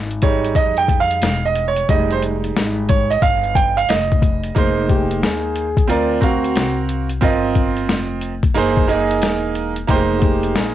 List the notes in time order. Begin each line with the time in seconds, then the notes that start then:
Already playing: G#1
0.11 closed hi-hat
0.22 G3 G#3 D#4 C#5, kick, closed hi-hat
0.45 closed hi-hat
0.55 F2 D#5, kick, closed hi-hat
0.77 G5, closed hi-hat
0.88 kick, closed hi-hat
1.00 F5
1.11 closed hi-hat
1.22 E1, snare, closed hi-hat
1.45 D#5
1.56 closed hi-hat
1.68 C#5
1.76 closed hi-hat
1.89 F1 G3 G#3 D#4 D#5, kick, closed hi-hat
2.10 C5, closed hi-hat
2.22 closed hi-hat
2.44 closed hi-hat
2.56 G#1, snare, closed hi-hat
2.89 C#5, kick, closed hi-hat
3.10 D#5, closed hi-hat
3.22 G1 F5, kick, closed hi-hat
3.44 closed hi-hat
3.55 G5, kick, closed hi-hat
3.77 F5, closed hi-hat
3.89 F1 D#5, snare, closed hi-hat
4.12 kick, closed hi-hat
4.22 kick, closed hi-hat
4.44 closed hi-hat
4.55 F1 G#3 A#3 D#4 C5, kick, closed hi-hat
4.89 G4, kick, closed hi-hat
5.11 closed hi-hat
5.22 D#2 G#4, snare, closed hi-hat
5.56 closed hi-hat
5.77 kick, closed hi-hat
5.88 D2 C4 F4 A#4 D5, closed hi-hat
6.21 C4 F#4 A#4 F5, kick, closed hi-hat
6.44 closed hi-hat
6.56 C2, snare, closed hi-hat
6.89 closed hi-hat
7.09 closed hi-hat
7.21 G1 C4 F4 A#4 D#5, kick, closed hi-hat
7.55 kick, closed hi-hat
7.77 closed hi-hat
7.89 F1, snare, closed hi-hat
8.21 closed hi-hat
8.43 kick, closed hi-hat
8.54 F#1 A#3 D#4 G#4 C5, closed hi-hat
8.77 kick
8.88 A#3 D#4 G#4 D#5, closed hi-hat
9.11 closed hi-hat
9.22 E1, snare, closed hi-hat
9.55 closed hi-hat
9.76 closed hi-hat
9.87 F1 A#3 D#4 G4 C5, kick, closed hi-hat
9.96 G#3
10.18 F#4
10.22 G4, kick, closed hi-hat
10.43 closed hi-hat
10.56 A#1 G#4, snare, closed hi-hat